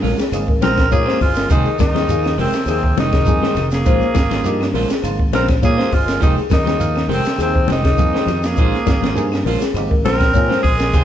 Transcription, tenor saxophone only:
0, 0, Header, 1, 2, 480
1, 0, Start_track
1, 0, Tempo, 588813
1, 1224, Time_signature, 4, 2, 24, 8
1, 9000, End_track
2, 0, Start_track
2, 0, Title_t, "Tenor saxophone"
2, 0, Program_c, 0, 66
2, 0, Note_on_c, 0, 68, 101
2, 125, Note_off_c, 0, 68, 0
2, 513, Note_on_c, 0, 70, 113
2, 732, Note_off_c, 0, 70, 0
2, 750, Note_on_c, 0, 68, 108
2, 970, Note_off_c, 0, 68, 0
2, 992, Note_on_c, 0, 65, 102
2, 1211, Note_off_c, 0, 65, 0
2, 1235, Note_on_c, 0, 63, 100
2, 1453, Note_off_c, 0, 63, 0
2, 1475, Note_on_c, 0, 63, 108
2, 1917, Note_off_c, 0, 63, 0
2, 1963, Note_on_c, 0, 60, 92
2, 2177, Note_off_c, 0, 60, 0
2, 2202, Note_on_c, 0, 60, 98
2, 2417, Note_off_c, 0, 60, 0
2, 2442, Note_on_c, 0, 63, 109
2, 3005, Note_off_c, 0, 63, 0
2, 3048, Note_on_c, 0, 68, 103
2, 3966, Note_off_c, 0, 68, 0
2, 4359, Note_on_c, 0, 70, 104
2, 4464, Note_off_c, 0, 70, 0
2, 4602, Note_on_c, 0, 68, 107
2, 4839, Note_on_c, 0, 65, 94
2, 4851, Note_off_c, 0, 68, 0
2, 5070, Note_off_c, 0, 65, 0
2, 5075, Note_on_c, 0, 63, 89
2, 5181, Note_off_c, 0, 63, 0
2, 5324, Note_on_c, 0, 63, 98
2, 5763, Note_off_c, 0, 63, 0
2, 5816, Note_on_c, 0, 60, 94
2, 6025, Note_off_c, 0, 60, 0
2, 6049, Note_on_c, 0, 60, 96
2, 6262, Note_off_c, 0, 60, 0
2, 6295, Note_on_c, 0, 63, 108
2, 6897, Note_on_c, 0, 68, 101
2, 6909, Note_off_c, 0, 63, 0
2, 7843, Note_off_c, 0, 68, 0
2, 8194, Note_on_c, 0, 70, 127
2, 8638, Note_off_c, 0, 70, 0
2, 8665, Note_on_c, 0, 68, 114
2, 9000, Note_off_c, 0, 68, 0
2, 9000, End_track
0, 0, End_of_file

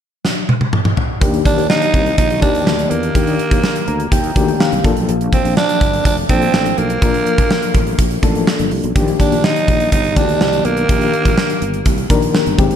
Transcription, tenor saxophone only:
0, 0, Header, 1, 2, 480
1, 0, Start_track
1, 0, Tempo, 483871
1, 1204, Time_signature, 4, 2, 24, 8
1, 12657, End_track
2, 0, Start_track
2, 0, Title_t, "Tenor saxophone"
2, 0, Program_c, 0, 66
2, 1448, Note_on_c, 0, 62, 99
2, 1670, Note_off_c, 0, 62, 0
2, 1682, Note_on_c, 0, 63, 110
2, 2129, Note_off_c, 0, 63, 0
2, 2163, Note_on_c, 0, 63, 110
2, 2387, Note_off_c, 0, 63, 0
2, 2401, Note_on_c, 0, 62, 107
2, 2879, Note_on_c, 0, 58, 95
2, 2894, Note_off_c, 0, 62, 0
2, 4322, Note_off_c, 0, 58, 0
2, 5292, Note_on_c, 0, 60, 90
2, 5511, Note_off_c, 0, 60, 0
2, 5529, Note_on_c, 0, 62, 108
2, 5973, Note_off_c, 0, 62, 0
2, 6012, Note_on_c, 0, 62, 103
2, 6118, Note_off_c, 0, 62, 0
2, 6250, Note_on_c, 0, 60, 106
2, 6728, Note_on_c, 0, 58, 93
2, 6743, Note_off_c, 0, 60, 0
2, 8166, Note_off_c, 0, 58, 0
2, 9124, Note_on_c, 0, 62, 93
2, 9367, Note_on_c, 0, 63, 108
2, 9381, Note_off_c, 0, 62, 0
2, 9843, Note_off_c, 0, 63, 0
2, 9849, Note_on_c, 0, 63, 104
2, 10088, Note_on_c, 0, 62, 110
2, 10103, Note_off_c, 0, 63, 0
2, 10569, Note_on_c, 0, 58, 93
2, 10584, Note_off_c, 0, 62, 0
2, 12007, Note_off_c, 0, 58, 0
2, 12657, End_track
0, 0, End_of_file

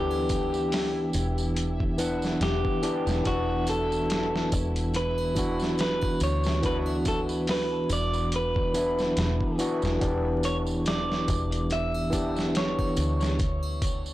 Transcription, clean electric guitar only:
0, 0, Header, 1, 2, 480
1, 0, Start_track
1, 0, Key_signature, 1, "minor"
1, 0, Tempo, 845070
1, 1848, Time_signature, 4, 2, 24, 8
1, 8029, End_track
2, 0, Start_track
2, 0, Title_t, "Clean electric guitar"
2, 0, Program_c, 0, 27
2, 0, Note_on_c, 0, 67, 91
2, 1371, Note_off_c, 0, 67, 0
2, 1378, Note_on_c, 0, 67, 91
2, 1855, Note_off_c, 0, 67, 0
2, 1857, Note_on_c, 0, 66, 85
2, 2097, Note_off_c, 0, 66, 0
2, 2099, Note_on_c, 0, 69, 82
2, 2551, Note_off_c, 0, 69, 0
2, 2819, Note_on_c, 0, 71, 88
2, 3292, Note_off_c, 0, 71, 0
2, 3298, Note_on_c, 0, 71, 83
2, 3540, Note_off_c, 0, 71, 0
2, 3542, Note_on_c, 0, 73, 91
2, 3779, Note_off_c, 0, 73, 0
2, 3781, Note_on_c, 0, 71, 85
2, 3844, Note_off_c, 0, 71, 0
2, 4022, Note_on_c, 0, 69, 73
2, 4085, Note_off_c, 0, 69, 0
2, 4264, Note_on_c, 0, 71, 94
2, 4500, Note_off_c, 0, 71, 0
2, 4503, Note_on_c, 0, 74, 107
2, 4742, Note_off_c, 0, 74, 0
2, 4747, Note_on_c, 0, 71, 90
2, 5435, Note_off_c, 0, 71, 0
2, 5936, Note_on_c, 0, 73, 75
2, 6000, Note_off_c, 0, 73, 0
2, 6178, Note_on_c, 0, 74, 85
2, 6658, Note_off_c, 0, 74, 0
2, 6660, Note_on_c, 0, 76, 103
2, 7138, Note_off_c, 0, 76, 0
2, 7140, Note_on_c, 0, 73, 75
2, 7591, Note_off_c, 0, 73, 0
2, 8029, End_track
0, 0, End_of_file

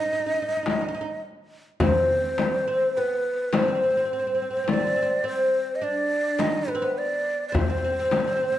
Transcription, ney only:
0, 0, Header, 1, 2, 480
1, 0, Start_track
1, 0, Tempo, 1147228
1, 754, Time_signature, 10, 3, 24, 8
1, 3594, End_track
2, 0, Start_track
2, 0, Title_t, "Ney"
2, 0, Program_c, 0, 77
2, 0, Note_on_c, 0, 75, 96
2, 501, Note_off_c, 0, 75, 0
2, 765, Note_on_c, 0, 72, 91
2, 1244, Note_on_c, 0, 71, 75
2, 1250, Note_off_c, 0, 72, 0
2, 1481, Note_on_c, 0, 72, 86
2, 1488, Note_off_c, 0, 71, 0
2, 1963, Note_on_c, 0, 74, 100
2, 1969, Note_off_c, 0, 72, 0
2, 2199, Note_off_c, 0, 74, 0
2, 2208, Note_on_c, 0, 72, 98
2, 2407, Note_on_c, 0, 75, 68
2, 2413, Note_off_c, 0, 72, 0
2, 2443, Note_on_c, 0, 74, 88
2, 2449, Note_off_c, 0, 75, 0
2, 2677, Note_on_c, 0, 75, 86
2, 2684, Note_off_c, 0, 74, 0
2, 2800, Note_on_c, 0, 71, 88
2, 2806, Note_off_c, 0, 75, 0
2, 2921, Note_on_c, 0, 74, 86
2, 2927, Note_off_c, 0, 71, 0
2, 3129, Note_off_c, 0, 74, 0
2, 3131, Note_on_c, 0, 74, 64
2, 3161, Note_on_c, 0, 72, 95
2, 3167, Note_off_c, 0, 74, 0
2, 3594, Note_off_c, 0, 72, 0
2, 3594, End_track
0, 0, End_of_file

